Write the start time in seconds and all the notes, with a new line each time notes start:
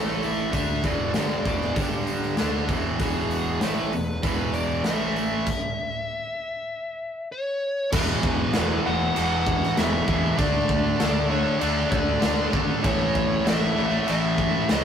Already playing: A1 A2 E3 A3 A4
0.23 E5, open hi-hat
0.53 D2 D3 A3 D4 E5, kick, open hi-hat
0.83 E1 E2 B2 E3 D5, kick, open hi-hat
1.14 G1 G2 D3 G3, snare, open hi-hat
1.45 E1 E2 B2 E3, kick, open hi-hat
1.61 snare
1.76 G1 G2 D3 G3, kick, open hi-hat
2.07 open hi-hat
2.22 snare
2.37 D2 D3 A3 D4, snare, open hi-hat
2.68 E1 E2 B2 E3, kick, open hi-hat
2.99 E1 E2 B2 E3 G#4, kick, open hi-hat
3.31 open hi-hat
3.61 A1 A2 E3 A3 B4, snare, open hi-hat
3.93 E1 E2 B2, open hi-hat
4.23 E1 E2 B2 E3 B4, kick, open hi-hat
4.54 D5, open hi-hat
4.84 A1 A2 E3 A3 E5, snare, open hi-hat
5.16 open hi-hat
5.46 kick, crash
7.32 C#5
7.92 E1 E2 B2 E3 B4, kick, crash
8.23 E1, kick
8.53 E1 E2 B2 E3, snare, crash
8.85 E1 E2 B2 E3 F#5
9.14 E1 E2 B2 E3, crash
9.47 kick
9.63 snare
9.77 E1 E2 B2 E3 E5, snare, crash
10.07 E2 B2 E3, kick
10.38 D2 D3 A3 D4 D5, kick, crash
10.69 D2, kick
10.99 D2 D3 A3 D4, snare, crash
11.30 D3 A3 D4 C#5
11.60 D2 D3 A3 D4 D5, crash
11.91 D2 D5, kick
12.21 D2 D3 A3 D4, snare, crash
12.52 G#1 D3 A3 D4, kick
12.83 A1 A2 E3 A3 C#5, kick, crash
13.15 A1, kick
13.45 A1 A2 E3 A3, snare, crash
13.49 E5
13.76 A1 A2 E3 A3
14.07 A1 A2 E3 A3 E5, crash
14.38 kick
14.69 C#2 A2 E3 A3 D#5, snare, crash